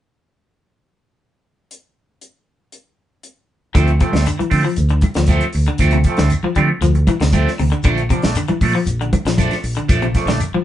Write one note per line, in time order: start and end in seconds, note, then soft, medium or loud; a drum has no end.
1.71 closed hi-hat soft
2.21 closed hi-hat soft
2.72 closed hi-hat soft
3.23 closed hi-hat soft
3.74 3.99 D2 medium
3.74 3.89 D3 medium
3.74 3.90 F3 medium
3.74 3.90 A3 medium
3.74 3.91 C4 medium
3.74 kick medium
3.74 closed hi-hat medium
3.74 high conga soft
3.74 claves soft
3.74 shekere medium
3.87 closed hi-hat soft
4.00 4.15 C3 medium
4.00 4.14 F3 medium
4.00 4.12 A3 medium
4.00 4.11 C4 medium
4.00 kick medium
4.00 closed hi-hat soft
4.00 shekere soft
4.12 4.25 D2 medium
4.12 4.26 A3 soft
4.12 4.26 C4 soft
4.12 snare medium
4.12 closed hi-hat soft
4.12 high conga medium
4.26 4.34 D3 medium
4.26 muted clean electric guitar stroke soft
4.26 closed hi-hat medium
4.26 high conga soft
4.26 claves medium
4.26 shekere medium
4.38 4.54 E3 medium
4.38 muted clean electric guitar stroke soft
4.38 muted fingered electric bass stroke soft
4.38 closed hi-hat soft
4.38 high conga medium
4.50 4.64 D3 medium
4.50 4.64 F3 medium
4.50 4.63 A3 medium
4.50 4.62 C4 medium
4.50 kick medium
4.50 open hi-hat medium
4.50 claves soft
4.50 shekere soft
4.63 4.79 F3 medium
4.63 muted clean electric guitar stroke soft
4.76 5.01 D2 medium
4.76 closed hi-hat medium
4.76 high conga soft
4.76 shekere medium
4.89 5.05 D3 medium
4.89 muted clean electric guitar stroke soft
4.89 closed hi-hat soft
5.01 muted clean electric guitar stroke soft
5.01 kick medium
5.01 closed hi-hat soft
5.01 high conga medium
5.01 claves medium
5.01 shekere soft
5.14 5.40 D2 medium
5.14 5.31 F3 medium
5.14 muted clean electric guitar stroke soft
5.14 snare medium
5.14 closed hi-hat soft
5.27 5.44 F3 medium
5.27 5.44 A3 medium
5.27 5.44 C4 medium
5.27 kick medium
5.27 closed hi-hat medium
5.27 high conga medium
5.27 shekere medium
5.41 closed hi-hat soft
5.41 claves medium
5.53 5.66 D2 medium
5.53 muted clean electric guitar stroke soft
5.53 open hi-hat soft
5.53 shekere soft
5.66 5.82 D3 medium
5.66 muted clean electric guitar stroke soft
5.66 closed hi-hat soft
5.78 6.04 D2 medium
5.78 5.95 F3 medium
5.78 5.96 A3 medium
5.78 5.96 C4 medium
5.78 kick medium
5.78 closed hi-hat medium
5.78 high conga soft
5.78 claves medium
5.78 shekere medium
5.91 6.07 C3 medium
5.91 closed hi-hat soft
6.04 6.19 F3 medium
6.04 6.19 A3 medium
6.04 kick medium
6.04 closed hi-hat soft
6.04 shekere soft
6.08 6.18 C4 medium
6.17 6.31 D2 medium
6.17 6.33 D3 medium
6.17 6.31 A3 soft
6.17 6.31 C4 soft
6.17 snare medium
6.17 closed hi-hat soft
6.17 high conga medium
6.30 muted clean electric guitar stroke soft
6.30 closed hi-hat medium
6.30 high conga soft
6.30 claves medium
6.30 shekere medium
6.43 6.51 F3 medium
6.43 muted fingered electric bass stroke soft
6.43 muted clean electric guitar stroke soft
6.43 high conga medium
6.55 6.69 D3 medium
6.55 6.69 F3 medium
6.55 6.71 G3 medium
6.55 6.69 A3 medium
6.55 6.69 C4 medium
6.55 kick medium
6.55 closed hi-hat soft
6.55 high conga medium
6.55 claves medium
6.55 shekere soft
6.70 muted clean electric guitar stroke soft
6.81 7.05 D2 medium
6.81 6.97 F3 medium
6.81 closed hi-hat medium
6.81 shekere medium
6.95 muted clean electric guitar stroke soft
6.95 closed hi-hat soft
7.07 7.16 E3 medium
7.07 muted clean electric guitar stroke soft
7.07 kick medium
7.07 closed hi-hat soft
7.07 high conga medium
7.07 claves medium
7.07 shekere soft
7.20 7.44 D2 medium
7.20 7.36 C3 medium
7.20 muted clean electric guitar stroke soft
7.20 snare medium
7.20 closed hi-hat soft
7.32 7.49 F3 medium
7.32 7.49 A3 medium
7.32 7.49 C4 medium
7.32 kick medium
7.32 closed hi-hat medium
7.32 high conga medium
7.32 shekere medium
7.47 snare soft
7.47 claves medium
7.58 7.71 D2 medium
7.58 7.67 C3 medium
7.58 muted clean electric guitar stroke soft
7.58 open hi-hat soft
7.58 shekere soft
7.72 7.79 D3 medium
7.72 muted clean electric guitar stroke soft
7.72 closed hi-hat soft
7.83 8.08 A#1 medium
7.83 8.00 D3 medium
7.83 8.00 F3 medium
7.83 8.00 A3 medium
7.83 8.00 D4 medium
7.83 kick medium
7.83 closed hi-hat medium
7.83 claves medium
7.83 shekere medium
7.97 closed hi-hat soft
8.09 8.25 C3 medium
8.09 8.24 F3 medium
8.09 8.22 D4 medium
8.09 kick medium
8.09 closed hi-hat soft
8.09 shekere soft
8.22 8.35 A#1 medium
8.22 8.36 A3 soft
8.22 8.36 D4 medium
8.22 snare medium
8.22 closed hi-hat soft
8.22 high conga medium
8.35 8.44 D3 medium
8.35 muted clean electric guitar stroke soft
8.35 closed hi-hat medium
8.35 claves medium
8.35 shekere medium
8.48 8.63 E3 medium
8.48 muted clean electric guitar stroke soft
8.48 muted fingered electric bass stroke soft
8.48 closed hi-hat soft
8.48 high conga medium
8.61 8.73 A#2 medium
8.61 8.75 F3 medium
8.61 8.75 A3 medium
8.61 8.74 D4 medium
8.61 kick medium
8.61 open hi-hat medium
8.61 high conga medium
8.61 claves medium
8.61 shekere soft
8.75 8.89 F3 medium
8.75 muted clean electric guitar stroke soft
8.86 9.11 A#1 medium
8.86 closed hi-hat medium
8.86 high conga soft
8.86 shekere medium
9.01 9.15 D3 medium
9.01 muted clean electric guitar stroke soft
9.01 closed hi-hat soft
9.13 muted clean electric guitar stroke soft
9.13 kick medium
9.13 closed hi-hat soft
9.13 high conga medium
9.13 claves medium
9.13 shekere soft
9.25 9.49 A#1 medium
9.25 9.41 F3 medium
9.25 muted clean electric guitar stroke soft
9.25 snare medium
9.25 closed hi-hat soft
9.38 9.53 F3 medium
9.38 9.54 A3 medium
9.38 9.54 D4 medium
9.38 kick medium
9.38 closed hi-hat medium
9.38 high conga medium
9.38 shekere medium
9.51 snare soft
9.51 closed hi-hat soft
9.51 claves medium
9.63 9.76 A#1 medium
9.63 muted clean electric guitar stroke soft
9.63 open hi-hat medium
9.63 shekere soft
9.77 9.91 D3 medium
9.77 muted clean electric guitar stroke soft
9.77 closed hi-hat soft
9.88 10.13 A#1 medium
9.88 10.05 F3 medium
9.88 10.05 A3 medium
9.88 10.05 D4 medium
9.88 kick medium
9.88 closed hi-hat medium
9.88 high conga soft
9.88 claves medium
9.88 shekere medium
10.02 10.17 C3 medium
10.02 closed hi-hat soft
10.15 10.28 F3 soft
10.15 10.28 A3 medium
10.15 10.29 D4 medium
10.15 kick medium
10.15 snare soft
10.15 closed hi-hat soft
10.15 shekere soft
10.26 10.39 A#1 medium
10.26 10.43 D3 medium
10.26 snare medium
10.26 closed hi-hat soft
10.26 high conga medium
10.30 10.41 A3 soft
10.30 10.41 D4 medium
10.40 muted clean electric guitar stroke soft
10.40 closed hi-hat medium
10.40 claves medium
10.40 shekere medium
10.52 10.61 F3 medium
10.52 muted fingered electric bass stroke soft
10.52 muted clean electric guitar stroke soft
10.52 high conga medium